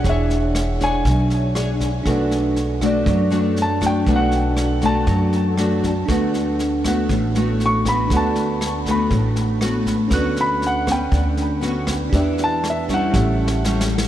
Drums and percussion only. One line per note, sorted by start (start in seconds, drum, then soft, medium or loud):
0.04 kick medium
0.04 snare soft
0.30 snare soft
0.55 cross-stick medium
0.55 snare soft
0.80 kick soft
0.80 snare soft
1.05 kick medium
1.05 snare soft
1.30 snare soft
1.55 cross-stick medium
1.55 snare soft
1.80 kick soft
1.80 snare soft
2.06 kick medium
2.06 cross-stick medium
2.06 snare soft
2.31 snare soft
2.56 snare soft
2.81 kick soft
2.81 cross-stick medium
2.81 snare soft
3.06 kick medium
3.06 snare soft
3.31 snare soft
3.56 snare soft
3.82 kick soft
3.82 cross-stick medium
3.82 snare soft
4.06 kick medium
4.06 snare soft
4.32 snare soft
4.57 cross-stick medium
4.57 snare soft
4.82 kick soft
4.82 snare soft
5.07 kick medium
5.07 snare soft
5.33 snare soft
5.58 cross-stick medium
5.58 snare soft
5.83 kick soft
5.83 snare soft
6.09 kick medium
6.09 cross-stick medium
6.09 snare soft
6.34 snare soft
6.59 snare soft
6.84 kick soft
6.84 cross-stick medium
6.84 snare soft
7.09 kick medium
7.09 snare soft
7.35 snare soft
7.60 snare soft
7.85 kick soft
7.85 cross-stick medium
7.85 snare soft
8.10 kick medium
8.10 snare soft
8.36 snare soft
8.61 cross-stick medium
8.61 snare soft
8.86 kick soft
8.86 snare soft
9.11 kick medium
9.11 snare soft
9.36 snare soft
9.61 cross-stick medium
9.61 snare soft
9.86 kick soft
9.86 snare soft
10.11 kick medium
10.11 cross-stick medium
10.11 snare soft
10.36 snare soft
10.62 snare soft
10.87 kick soft
10.87 cross-stick medium
10.87 snare soft
11.12 kick medium
11.12 snare soft
11.37 snare soft
11.62 snare soft
11.87 kick soft
11.87 cross-stick medium
11.87 snare soft
12.13 kick medium
12.13 snare soft
12.38 snare soft
12.64 cross-stick medium
12.64 snare soft
12.89 kick soft
12.89 snare soft
13.14 kick medium
13.14 snare soft
13.48 snare soft
13.65 snare soft
13.81 snare medium
13.98 snare medium